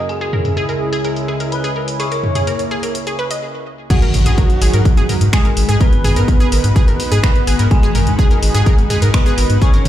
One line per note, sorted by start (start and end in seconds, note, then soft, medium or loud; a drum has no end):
0.00 3.39 C#3 medium
0.00 1.62 C#4 medium
0.00 1.62 A#4 medium
0.00 1.62 F#5 medium
0.09 3.39 C#2 medium
0.09 1.98 G#3 medium
0.09 3.42 E4 medium
0.09 3.39 E4 medium
0.09 1.42 G#4 loud
0.09 1.43 G#5 medium
0.09 closed hi-hat medium
0.21 0.30 G#4 loud
0.21 closed hi-hat soft
0.33 0.38 A#4 medium
0.33 3.42 C#5 medium
0.33 3.43 G#5 medium
0.33 mid tom medium
0.45 closed hi-hat medium
0.45 mid tom medium
0.57 0.65 G#4 loud
0.57 closed hi-hat medium
0.69 0.74 A#4 medium
0.69 closed hi-hat soft
0.93 1.01 G#4 loud
0.93 closed hi-hat medium
1.04 1.10 A#4 medium
1.04 closed hi-hat medium
1.16 closed hi-hat soft
1.28 1.37 G#4 medium
1.40 1.45 A#4 medium
1.40 closed hi-hat medium
1.52 1.96 B4 medium
1.52 1.96 B5 medium
1.52 closed hi-hat medium
1.64 1.73 G#4 loud
1.64 closed hi-hat soft
1.76 1.81 A#4 medium
1.88 closed hi-hat medium
2.00 3.41 A#3 medium
2.00 2.08 G#4 loud
2.00 3.33 C#5 loud
2.00 3.33 C#6 medium
2.00 closed hi-hat medium
2.12 2.17 A#4 medium
2.12 closed hi-hat soft
2.23 mid tom medium
2.35 2.44 G#4 loud
2.35 closed hi-hat medium
2.35 mid tom medium
2.47 2.52 A#4 medium
2.47 closed hi-hat medium
2.59 closed hi-hat soft
2.71 2.80 G#4 loud
2.83 2.88 A#4 medium
2.83 closed hi-hat medium
2.95 closed hi-hat medium
3.07 3.15 G#4 loud
3.07 closed hi-hat soft
3.19 3.24 B4 loud
3.31 3.42 D#5 medium
3.31 closed hi-hat medium
3.90 5.24 F#3 medium
3.90 9.89 G#3 medium
3.90 9.89 D#4 medium
3.90 9.89 F#4 medium
3.90 5.24 F#4 loud
3.90 3.99 G#4 loud
3.90 9.89 B4 medium
3.90 5.24 F#5 loud
3.90 kick loud
3.90 closed hi-hat medium
3.90 crash loud
3.90 impact medium
4.02 4.27 G#1 medium
4.02 4.07 A#4 medium
4.02 closed hi-hat soft
4.14 mid tom medium
4.14 open hi-hat loud
4.26 4.33 G#2 medium
4.26 4.35 G#4 loud
4.26 closed hi-hat medium
4.26 mid tom medium
4.38 4.43 A#4 medium
4.38 kick loud
4.38 closed hi-hat medium
4.50 closed hi-hat soft
4.62 4.69 G#1 medium
4.62 4.70 G#4 loud
4.62 open hi-hat loud
4.74 4.81 G#2 medium
4.74 4.79 A#4 medium
4.74 closed hi-hat medium
4.85 kick loud
4.85 closed hi-hat medium
4.97 5.05 G#1 medium
4.97 5.06 G#4 loud
4.97 closed hi-hat soft
5.09 5.14 A#4 medium
5.09 mid tom medium
5.09 open hi-hat loud
5.21 5.29 G#2 medium
5.21 closed hi-hat medium
5.33 5.77 G#3 medium
5.33 5.42 G#4 loud
5.33 5.77 G#4 loud
5.33 5.77 G#5 medium
5.33 finger snap loud
5.33 kick loud
5.33 closed hi-hat medium
5.45 5.50 A#4 medium
5.45 closed hi-hat soft
5.57 5.64 G#1 loud
5.57 open hi-hat loud
5.69 5.76 G#2 medium
5.69 5.77 G#4 loud
5.69 closed hi-hat medium
5.81 7.14 B3 medium
5.81 5.86 A#4 medium
5.81 7.14 B4 loud
5.81 7.14 B5 medium
5.81 kick loud
5.81 closed hi-hat medium
5.93 6.18 G#1 medium
5.93 closed hi-hat soft
6.04 6.13 G#4 loud
6.04 mid tom medium
6.04 open hi-hat loud
6.16 6.24 G#2 medium
6.16 6.22 A#4 medium
6.16 closed hi-hat medium
6.28 kick loud
6.28 closed hi-hat medium
6.40 6.49 G#4 loud
6.40 closed hi-hat soft
6.52 6.60 G#1 loud
6.52 6.57 A#4 medium
6.52 open hi-hat loud
6.64 6.71 G#2 medium
6.64 closed hi-hat medium
6.76 6.85 G#4 loud
6.76 kick loud
6.76 closed hi-hat medium
6.88 6.95 G#1 medium
6.88 6.93 A#4 medium
6.88 closed hi-hat soft
7.00 open hi-hat loud
7.12 7.19 G#2 medium
7.12 7.20 G#4 loud
7.12 closed hi-hat medium
7.23 7.67 B3 medium
7.23 7.29 A#4 medium
7.23 7.67 B4 medium
7.23 7.67 B5 medium
7.23 finger snap loud
7.23 kick loud
7.23 closed hi-hat medium
7.35 closed hi-hat soft
7.47 7.55 G#1 loud
7.47 7.56 G#4 loud
7.47 open hi-hat loud
7.59 7.67 G#2 medium
7.59 7.64 A#4 medium
7.59 closed hi-hat medium
7.71 9.04 G#3 medium
7.71 9.04 G#4 loud
7.71 9.04 G#5 loud
7.71 kick loud
7.71 closed hi-hat medium
7.83 8.08 G#1 medium
7.83 7.92 G#4 loud
7.83 closed hi-hat soft
7.95 8.00 A#4 medium
7.95 mid tom loud
7.95 open hi-hat loud
8.07 8.14 G#2 medium
8.07 closed hi-hat medium
8.07 mid tom medium
8.19 8.27 G#4 loud
8.19 kick loud
8.19 closed hi-hat medium
8.31 8.36 A#4 medium
8.31 closed hi-hat soft
8.43 8.50 G#1 loud
8.43 open hi-hat loud
8.54 8.62 G#2 medium
8.54 8.63 G#4 loud
8.54 closed hi-hat medium
8.66 8.72 A#4 medium
8.66 kick loud
8.66 closed hi-hat medium
8.78 8.86 G#1 medium
8.78 closed hi-hat soft
8.90 8.99 G#4 loud
8.90 mid tom medium
8.90 open hi-hat loud
9.02 9.10 G#2 medium
9.02 9.07 A#4 medium
9.02 closed hi-hat medium
9.14 9.58 B3 medium
9.14 9.58 B4 loud
9.14 9.58 B5 medium
9.14 finger snap loud
9.14 kick loud
9.14 closed hi-hat medium
9.26 9.35 G#4 loud
9.26 closed hi-hat soft
9.38 9.45 G#1 loud
9.38 9.43 A#4 medium
9.38 open hi-hat loud
9.50 9.57 G#2 medium
9.50 closed hi-hat medium
9.62 9.89 C#4 medium
9.62 9.70 G#4 medium
9.62 9.89 C#5 loud
9.62 9.89 C#6 loud
9.62 kick loud
9.62 closed hi-hat medium
9.73 9.89 G#1 medium
9.73 9.79 A#4 medium
9.73 closed hi-hat soft
9.85 mid tom loud
9.85 open hi-hat loud